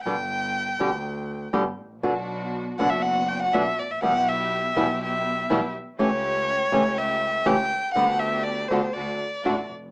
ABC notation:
X:1
M:4/4
L:1/16
Q:1/4=122
K:G
V:1 name="Violin"
g12 z4 | z6 f e f2 g f e2 d e | f2 e6 e6 z2 | ^c8 e4 g4 |
f2 e2 d2 c2 d6 z2 |]
V:2 name="String section"
z16 | [B,DF]6 [B,DF]6 [B,DF]2 z2 | [B,EG]6 [B,EG]6 [B,EG]2 z2 | [A,^CG]6 [A,CG]6 [A,CG]2 z2 |
[B,DG]6 [B,DG]2 [A,DF]2 z2 [A,DF]2 z2 |]
V:3 name="Nylon-string guitar"
[B,,D,G,B,G]2 z4 [B,,D,G,B,G]2 z4 [B,,D,G,B,G]2 z2 | [B,,D,B,DF]2 z4 [B,,D,B,DF]2 z4 [B,,D,B,DF]2 z2 | [B,,E,G,B,E]2 z4 [B,,E,G,B,E]2 z4 [B,,E,G,B,E]2 z2 | [^C,E,A,^CG]2 z4 [C,E,A,CG]2 z4 [C,E,A,CG]2 z2 |
[D,G,B,G]2 z4 [D,A,DF]2 z4 [D,A,DF]2 z2 |]
V:4 name="Double bass" clef=bass
G,,,6 D,,6 G,,,2 A,,,2 | B,,,6 F,,,6 B,,,2 A,,,2 | B,,,6 B,,,6 B,,,2 z2 | ^C,,6 C,,6 C,,2 z2 |
D,,6 D,,2 D,,2 z2 A,,,2 =F,,,2 |]